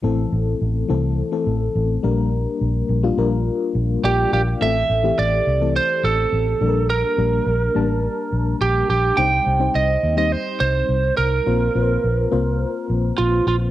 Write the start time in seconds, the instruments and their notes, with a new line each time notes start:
0.03 fingered electric bass A1, fm electric piano E3 A3 C4 A4
0.32 fingered electric bass A1
0.61 fingered electric bass A1
0.89 fingered electric bass C2, fm electric piano E3 A3 C4 A4
1.32 fm electric piano E3 A3 C4 A4
1.47 fingered electric bass A1
1.75 fingered electric bass A1
2.03 fingered electric bass A#1, fm electric piano G3 A#3 D4 A#4
2.61 fingered electric bass A#1
2.89 fingered electric bass A#1
3.03 fm electric piano G3 A#3 D4 F4
3.17 fingered electric bass A#1, fm electric piano G3 A#3 D4 A#4
3.75 fingered electric bass A#1
4.03 fingered electric bass A#1, lead electric guitar G4, fm electric piano A#4 D5
4.18 fm electric piano G5
4.33 fingered electric bass A#1, lead electric guitar G4, fm electric piano D5 F5
4.47 fm electric piano G5
4.60 fingered electric bass A1, fm electric piano E3 A3 C4 A4, lead electric guitar E5
4.90 fingered electric bass A1
5.03 fm electric piano E3 A3 C4 G4
5.18 fingered electric bass A1, lead electric guitar D5
5.47 fingered electric bass C2
5.60 fm electric piano E3 A3 C4 A4
5.76 lead electric guitar C5
6.04 fingered electric bass A1, lead electric guitar A4
6.33 fingered electric bass A1
6.61 fingered electric bass A#1, fm electric piano G3 A#3 D4 A4
6.68 fm electric piano A#4
6.90 lead electric guitar A#4
7.18 fingered electric bass A#1, fm electric piano G3 A#3 D4 A#4
7.46 fingered electric bass A#1
7.75 fingered electric bass A1, fm electric piano G3 A#3 D4 A5
8.32 fingered electric bass A#1
8.61 fingered electric bass A#1, lead electric guitar G4
8.89 fingered electric bass A#1, lead electric guitar G4
9.17 fingered electric bass C2, fm electric piano G3 C4 D#4 C5, lead electric guitar G5
9.46 fingered electric bass C2
9.59 fm electric piano G3 C4 D#4 C5
9.75 fingered electric bass C2, lead electric guitar D#5
10.03 fingered electric bass D#2
10.17 fm electric piano G3 C4 D#4 C5, lead electric guitar D#5
10.32 lead electric guitar C5
10.60 fingered electric bass C2, lead electric guitar C5
10.89 fingered electric bass C2
11.17 fingered electric bass C2, lead electric guitar A#4
11.46 fingered electric bass A#1, fm electric piano A#3 C4 F4 C5
11.75 fingered electric bass A#1, fm electric piano A#3 C4 F4 B4
11.83 fm electric piano C5
12.04 fingered electric bass A#1
12.32 fingered electric bass C2, fm electric piano A#3 C4 F4 C5
12.90 fingered electric bass A#1
13.18 fingered electric bass A#1, lead electric guitar F4
13.47 fingered electric bass A#1, lead electric guitar F4